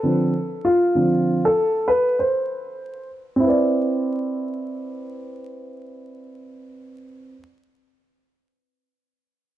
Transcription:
upright piano
Already playing: A4
0.03 D3 F3 C4
0.65 F4
0.95 D3 F3 C4
1.45 A4
1.88 B4
2.19 C5
3.36 C4 E4
3.44 B4
3.49 D5

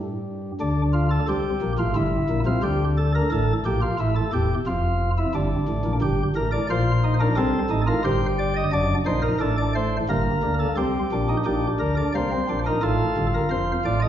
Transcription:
pipe organ
Already playing: G2
0.61 D2 D3 D4
0.93 F4
1.11 A4
1.29 C2 C3 G4
1.62 A#1 A#2
1.79 A1 A2 F4
1.96 G1 G2 E4
2.30 A#1 A#2
2.46 C2 C3 F4
2.63 D2 D3 G4
2.97 A4
3.15 A#4
3.32 A1 A2 A4
3.65 A#1 A#2 G4
3.82 F4
4.00 A1 A2 E4
4.16 A4
4.33 E1 E2 G4
4.67 F1 F2 F4
5.18 E4
5.35 G1 G2 D4
5.68 A1 A2
5.85 A#1 A#2
6.01 G1 G2 G4
6.36 A1 A2 A#4
6.52 D5
6.70 A#1 A#2 F4 C5
7.04 D#4
7.20 D4 A#4
7.37 C2 C3 C4 A4
7.70 A1 A2 D#4
7.87 F4 A#4
8.05 G1 G2 G4 C5
8.39 D5
8.56 D#5
8.73 F#1 F#2 D4 D5
9.06 A#1 A#2 D#4 C5
9.22 A#4
9.40 A1 A2 D4 A4
9.58 D5
9.75 A3 C5
10.09 G1 G2 A#3 A#4
10.43 D2 D3
10.59 A4
10.77 C2 C3 C4 G4
11.12 A#1 A#2 D4
11.29 D#4
11.45 A#1 A#2 D4 G4
11.79 D2 D3 A#4
11.97 D5
12.15 C2 C3 A#3 C5
12.32 C4
12.49 A#1 A#2 D4
12.66 D#4 A#4
12.82 A1 A2 F4 A4
13.17 G1 G2
13.34 A#4
13.51 F1 F2 C5
13.85 A1 A2 D5
14.02 D#5

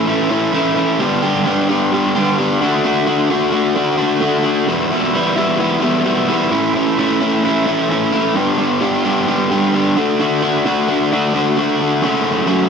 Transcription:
overdriven electric guitar
Already playing: A2
0.07 E3 A3 C#4 E4
0.30 A2 E3 A3 C#4 E4
0.53 E3 A3 C#4 E4
0.76 A3 C#4 E4
0.99 G2 D3 G3 B3 D4 G4
1.22 G3 B3 D4 G4
1.46 G3 B3 D4 G4
1.69 G2 D3 G3 B3 D4 G4
1.92 G3 B3 D4 G4
2.15 G2 D3 G3 B3 D4 G4
2.38 G3 B3 D4 G4
2.61 D3 A3 D4 F#4
2.84 D3 A3 D4 F#4
3.07 A3 D4 F#4
3.30 D3 A3 D4 F#4
3.52 D3 A3 D4 F#4
3.75 D3 A3 D4 F#4
3.98 D3 A3 D4 F#4
4.21 D3 A3 D4 F#4
4.44 A3 D4 F#4
4.67 E2 B2 E3 G3 B3 E4
4.91 E3 G3 B3 E4
5.14 E3 G3 B3 E4
5.36 E2 B2 E3 G3 B3 E4
5.59 E3 G3 B3 E4
5.82 E2 B2 E3 G3 B3 E4
6.05 E3 G3 B3 E4
6.28 E3 G3 B3 E4
6.51 A2 E3 A3 C#4 E4
6.74 A3 C#4 E4
6.98 E3 A3 C#4 E4
7.20 A2 E3 A3 C#4 E4
7.43 E3 A3 C#4 E4
7.66 A2 E3 A3 C#4 E4
7.88 E3 A3 C#4 E4
8.12 A3 C#4 E4
8.34 G2 D3 G3 B3 D4 G4
8.58 G3 B3 D4 G4
8.81 G3 B3 D4 G4
9.04 G2 D3 G3 B3 D4 G4
9.26 G3 B3 D4 G4
9.50 G2 D3 G3 B3 D4 G4
9.73 G3 B3 D4 G4
9.97 D3 A3 D4 F#4
10.20 D3 A3 D4 F#4
10.42 A3 D4 F#4
10.66 D3 A3 D4 F#4
10.88 D3 A3 D4 F#4
11.11 D3 A3 D4 F#4
11.34 D3 A3 D4 F#4
11.57 D3 A3 D4 F#4
11.80 A3 D4 F#4
12.02 F#2 C#3 F#3 A3 C#4 F#4
12.47 F#2 C#3 F#3 A3 C#4 F#4

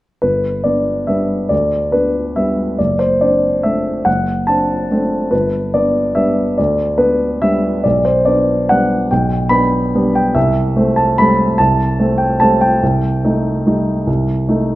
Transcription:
grand piano
0.22 G1 B4
0.64 B3 D4 D5
1.07 G3 B3 D4 E5
1.49 D2 D5
1.92 B3 D4 B4
2.36 G3 B3 D4 E5
2.79 F#1 D5
2.99 C5
3.21 C4 D4 D5
3.63 A3 C4 D4 E5
4.05 F#1 F#5
4.47 C4 D4 A5
4.91 A3 C4 D4
5.31 G1 B4
5.74 B3 D4 D5
6.15 G3 B3 D4 E5
6.58 D2 D5
6.98 B3 D4 B4
7.42 G3 B3 D4 E5
7.84 B1 D5
8.05 C5
8.25 B3 D4 D5
8.69 G3 B3 D4 F#5
9.11 B1 G5
9.49 B3 D4 B5
9.95 G3 B3 D4
10.15 G5
10.35 C2 E5
10.77 A3 C4
10.96 A5
11.18 G3 A3 C4 B5
11.58 C2 A5
12.00 A3 C4
12.18 G5
12.40 G3 A3 C4 A5
12.61 G5
12.83 C2
13.25 A3 D#4
13.67 G3 A3 D#4
14.07 C2
14.49 A3 D#4

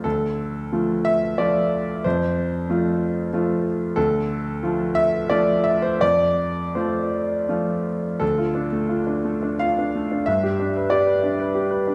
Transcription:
grand piano
0.04 D2 A4
0.72 F3 A3 F4
1.05 E5
1.38 F3 A3 F4 D5
2.04 F2 C5
2.70 F3 A3 F4
3.33 F3 A3 F4
3.96 D2 A4
4.63 F3 A3 F4
4.95 E5
5.30 F3 A3 F4 D5
5.64 E5
5.82 C5
6.01 F2 D5
6.75 F3 A3 F4 C5
7.49 F3 A3 F4
8.20 D2 A4
8.38 F4
8.55 D4
8.72 A3
8.89 F4
9.07 D4
9.25 A3
9.43 D4
9.59 F4 F5
9.78 D4
9.96 A3
10.12 D4
10.26 G2 E5
10.43 G4
10.60 D4
10.76 B4
10.90 G4 D5
11.07 B4
11.23 D4
11.39 B4
11.55 G4
11.71 B4
11.87 D4

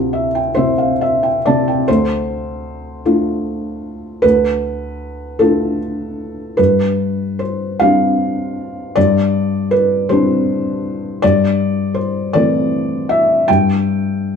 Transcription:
felt piano
Already playing: D2 C3 F4 G4 C5
0.13 E5
0.35 G5
0.55 C3 C5 E5
0.78 F5
1.01 E5
1.23 G5
1.46 C3 D5 A5
1.68 G5
1.88 D2 C5
3.05 A3 D4 F4
4.22 D2 B4
5.39 A3 D4 F4 A4
6.57 G2 B4
7.39 C5
7.80 G3 C4 D4 F5
8.96 G2 D5
9.71 B4
10.09 G3 C4 D4 C5
11.22 G2 D5
11.94 C5
12.33 E3 A3 C4 D5
13.09 E5
13.48 G2 G5

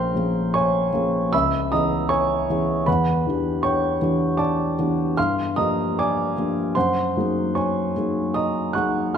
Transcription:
grand piano
Already playing: A#1 F3 A#3 C#4 G#4 A#4 C5 F5 G5 A#5 C6
0.14 F3 A#3 C#4 G#4
0.54 C#5 G#5 C#6
0.93 F3 A#3 C#4 G#4
1.33 C#2 E5 B5 E6
1.72 E3 B3 C#4 G#4 D#5 A#5 D#6
2.09 C#5 G#5 C#6
2.50 E3 B3 C#4 G#4
2.86 E2 B4 F#5 B5
3.27 E3 B3 D4 G4
3.63 C#5 G5 C#6
4.02 E3 B3 D4 G4
4.37 D5 A5 D6
4.79 E3 B3 D4 G4
5.17 G2 F5 C6 F6
5.56 F3 A#3 D4 G4 D#5 A#5 D#6
5.99 D5 G#5 D6
6.37 F3 A#3 D4 G4
6.75 F#2 C5 F#5 C6
7.17 F#3 A#3 D#4 G#4
7.55 C#5 G#5 C#6
7.97 F#3 A#3 D#4 G#4
8.34 D#5 A#5 D#6
8.73 F#3 A#3 D#4 G#4 F#5 C#6 F#6
9.14 F6

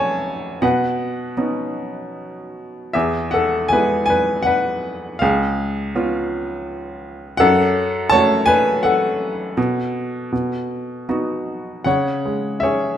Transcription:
upright piano
Already playing: F#2 A3 C#4 F#4 A4 C#5 F#5 G#5 A5
0.62 B2 B4 F#5
1.37 B3 C#4 D#4
2.93 E2 G#4 E5
3.31 A4 F#5
3.68 G#3 B3 G#5
3.72 E4 B4
4.06 G#5
4.10 B4
4.43 F#5
4.47 B4
5.19 C#2 G#4 F5
5.95 B3 C#4 F4
7.37 F#2 A4 F#5
8.10 A3 C#4 F#4 C#5 A5
8.46 B4 G#5
8.83 A4 F#5
9.57 B2
10.32 B2
11.09 B3 D#4 F#4
11.84 C#3 C#5 F#5
12.25 G#3
12.60 C#4 G#4 C#5 E5

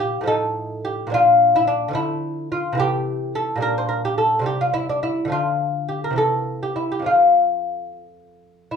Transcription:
lute
Already playing: A#2 F3 A#3
0.00 G4
0.21 A2 F3
0.26 D#4 A4
0.85 G4
1.07 A#2 F3
1.11 D4 F4
1.56 E4
1.67 D4
1.88 D3 F3
1.93 A3 E4
2.52 F4
2.73 C3 E3
2.78 A3 G4
3.35 A4
3.56 A#2 G3
3.61 D4 A#4
3.78 C5
3.89 A#4
4.05 G4
4.18 A4
4.39 C3 G3
4.43 C4 G4
4.61 F4
4.74 E4
4.89 D4
5.03 E4
5.25 D3 F3
5.30 A3 F4
5.89 G4
6.04 A#4
6.10 C3 E3
6.16 A#3 A4
6.63 G4
6.76 E4
6.92 G4
6.99 F2 F3
7.04 A3 F4
8.71 E4

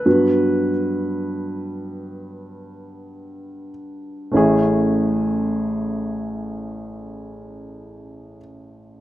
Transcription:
grand piano
Already playing: B4
0.06 G2 F#3 B3
4.32 A1 A3 C#4 E4
4.37 G#4

